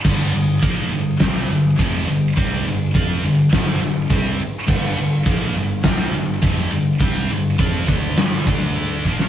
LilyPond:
<<
  \new Staff \with { instrumentName = "Distorted electric guitar" } { \clef bass \time 4/4 \key d \dorian \tempo 4 = 103 <g, d g>8 <g, d>8 <bes, f bes>8 <g, d>8 <c g c'>8 <g, d>8 <f, c f>8 <g, d>8 | <c g c'>8 <g, d>8 <f c' f'>8 <g, d>8 <g, d g>8 <g, d>8 <c g c'>8 r8 | <g, d g>8 <g, d>8 <bes, f bes>8 <g, d>8 <c g c'>8 <g, d>8 <f, c f>8 <g, d>8 | <c g c'>8 <g, d>8 <f c' f'>8 <d a d'>8 <g, d g>8 <d a d'>4 <bes, f bes>8 | }
  \new Staff \with { instrumentName = "Fingered electric bass" } { \clef bass \time 4/4 \key d \dorian g,,8 g,,8 bes,,8 g,,8 c,8 g,,8 f,,8 g,,8 | c,8 g,,8 f,8 g,,8 g,,8 g,,8 c,8 r8 | g,,8 g,,8 bes,,8 g,,8 c,8 g,,8 f,,8 g,,8 | c,8 g,,8 f,8 d,8 g,,8 d,4 bes,,8 | }
  \new DrumStaff \with { instrumentName = "Drums" } \drummode { \time 4/4 <cymc bd>8 cymr8 <bd cymr>8 cymr8 <bd cymr sn>8 cymr8 <bd cymr>8 cymr8 | <bd cymr>8 cymr8 <bd cymr>8 cymr8 <bd cymr sn>8 cymr8 <bd cymr>8 cymr8 | <cymc bd>8 cymr8 <bd cymr>8 cymr8 <bd cymr sn>8 cymr8 <bd cymr>8 cymr8 | <bd cymr>8 cymr8 <bd cymr>8 <bd cymr>8 <cymr sn>8 <bd cymr>8 cymr8 bd16 sn16 | }
>>